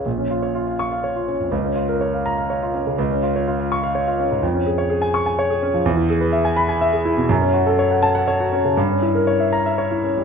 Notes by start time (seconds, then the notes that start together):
0.06 A#1
0.18 C#4
0.30 F4
0.42 C#5
0.55 F4
0.67 F5
0.79 C#6
0.92 F5
1.04 C#5
1.16 F4
1.28 C#4
1.40 F2
1.52 C#2
1.63 C#4
1.75 F4
1.89 A#4
2.01 C#5
2.13 F5
2.26 A#5
2.38 F5
2.50 C#5
2.62 F4
2.74 C#4
2.87 C#3
2.98 C#2
3.11 C#4
3.23 F4
3.36 C#5
3.48 F4
3.59 F5
3.72 C#6
3.83 F5
3.95 C#5
4.07 F4
4.19 C#4
4.31 G#2
4.43 F2
4.54 C#4
4.66 G#4
4.78 C#5
4.90 G#4
5.02 G#5
5.14 C#6
5.26 G#5
5.39 C#5
5.50 G#4
5.62 C#4
5.74 F3
5.86 E2
5.97 E4
6.10 G#4
6.21 B4
6.32 E5
6.45 G#5
6.56 B5
6.69 G#5
6.81 E5
6.93 G#4
7.05 E4
7.17 B2
7.29 F#2
7.42 C#4
7.54 F#4
7.66 A4
7.79 C#5
7.91 F#5
8.03 A5
8.15 F#5
8.28 C#5
8.40 F#4
8.52 C#4
8.65 C#3
8.77 G2
8.89 C#4
9.02 E4
9.15 A#4
9.27 C#5
9.40 E5
9.53 A#5
9.66 E5
9.78 C#5
9.91 E4
10.04 C#4
10.17 G3